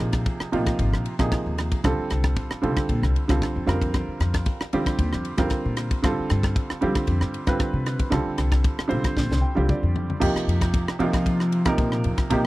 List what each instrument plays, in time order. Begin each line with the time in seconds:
Already playing: grand piano C3 F3 A#3 D#4 G#4
0.00 upright bass A#1
0.13 kick, cross-stick, ride
0.26 kick, ride
0.40 muted upright bass stroke, cross-stick
0.52 upright bass A#2, grand piano C3 F3 A#3 D#4 F4, ride
0.66 kick, cross-stick, ride
0.79 upright bass G#1, kick, ride
0.92 upright bass A#1, cross-stick
1.05 ride
1.19 upright bass A#1, grand piano C3 F3 A#3 D#4 G#4, kick, cross-stick, ride
1.32 kick, cross-stick, ride
1.46 upright bass D#2
1.58 cross-stick, ride
1.71 kick, ride
1.84 upright bass C2, grand piano D3 G3 C4 F4 A4, kick, cross-stick, ride
1.99 muted upright bass stroke
2.10 upright bass C2, cross-stick, ride
2.24 kick, cross-stick, ride
2.36 kick, ride
2.51 muted upright bass stroke, cross-stick
2.62 upright bass C3, grand piano D3 G3 C4 F4 A4, ride
2.77 kick, cross-stick, ride
2.89 upright bass A#1, kick, ride
3.03 upright bass C2, cross-stick
3.16 ride
3.28 upright bass C2, grand piano D3 G3 C4 F4 A4, kick, cross-stick, ride
3.42 kick, cross-stick, ride
3.56 upright bass F2
3.66 upright bass F2, grand piano D3 G3 C4 F4 A#4, cross-stick, ride
3.81 kick, ride
3.94 kick, cross-stick, ride
4.08 muted upright bass stroke
4.20 upright bass F2, cross-stick, ride
4.34 kick, cross-stick, ride
4.46 kick, ride
4.61 muted upright bass stroke, cross-stick
4.73 grand piano D3 G3 C4 F4 G4, upright bass F3, ride
4.86 kick, cross-stick, ride
4.99 upright bass D#2, kick, ride
5.13 upright bass F2, cross-stick
5.25 ride
5.37 upright bass F2, grand piano D3 G3 C4 F4 A#4, kick, cross-stick, ride
5.50 kick, cross-stick, ride
5.65 upright bass A#2
5.77 cross-stick, ride
5.91 kick, ride
6.03 upright bass G2, grand piano D3 G3 C4 F4 A4, kick, cross-stick, ride
6.19 muted upright bass stroke
6.30 upright bass G2, cross-stick, ride
6.43 kick, cross-stick, ride
6.56 kick, ride
6.70 muted upright bass stroke, cross-stick
6.81 grand piano D3 G3 C4 F4 G4, upright bass G3, ride
6.95 kick, cross-stick, ride
7.07 upright bass F2, kick, ride
7.21 upright bass G2, cross-stick
7.34 ride
7.47 upright bass G2, grand piano D3 G3 C4 F4 B4, kick, cross-stick, ride
7.60 kick, cross-stick, ride
7.73 upright bass C3
7.86 cross-stick, ride
8.00 kick, ride
8.10 upright bass C2, grand piano D3 G3 C4 F4 A4, kick, cross-stick, ride
8.26 muted upright bass stroke
8.38 upright bass C2, cross-stick, ride
8.52 kick, cross-stick, ride
8.64 kick, ride
8.78 muted upright bass stroke, cross-stick
8.88 upright bass C3, grand piano D3 G3 C4 F4 C5, ride
9.04 kick, cross-stick, ride
9.17 upright bass A#1, kick, snare
9.30 upright bass C2, snare
9.41 grand piano G5
9.55 upright bass C2, grand piano D3 G3 C4 F4 G4, high tom
9.69 grand piano D5, kick, mid tom
9.83 upright bass F2
9.96 floor tom
10.10 floor tom
10.20 upright bass F2, grand piano C3 F3 A#3 D#4 G4, kick, crash
10.35 muted upright bass stroke, cross-stick
10.47 upright bass F2, ride
10.61 kick, cross-stick, ride
10.74 kick, ride
10.87 muted upright bass stroke, cross-stick
10.99 grand piano C3 F3 A#3 D#4 F4, upright bass F3, ride
11.13 kick, cross-stick, ride
11.26 kick, ride
11.40 cross-stick
11.52 ride
11.65 grand piano C3 F3 A#3 D#4 A#4, muted upright bass stroke, kick, cross-stick, ride
11.78 upright bass A#2, kick, ride
11.92 cross-stick
12.04 upright bass F2, ride
12.18 kick, cross-stick, ride
12.30 upright bass A#2, grand piano C3 F3 A#3 D#4 G4, kick, ride